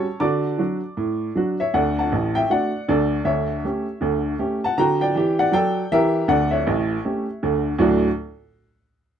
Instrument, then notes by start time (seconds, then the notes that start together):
upright piano
Already playing: C#5 A5 C#6
0.20 D3 F#4 D5 A5 D6
0.58 F#3 D4 F#4
0.97 A2
1.35 F#3 D4 F#4
1.60 C#5 E5
1.74 D2 D3 D5 F#5
1.99 F#5 A5
2.12 A1 A2
2.35 E5 G5
2.50 A3 D4 F#4 D5 F#5
2.88 D2 D3 A4 D5
3.24 D2 D3 C#5 E5
3.64 A3 C#4 G4
4.01 D2 D3
4.39 A3 C#4 G4
4.64 F#5 A5
4.78 D3 F#4 G5 A#5
5.01 D5 G5
5.15 E3 G4
5.39 D5 F#5
5.52 F#3 A4 D5 G5
5.92 E3 G4 A#4 E5
6.28 D2 D3 D5 F#5
6.51 C#5 E5
6.67 A1 A2
7.05 A3 C#4 G4
7.43 D2 D3
7.78 D2 A2 F#3 A3 D4 F#4 D5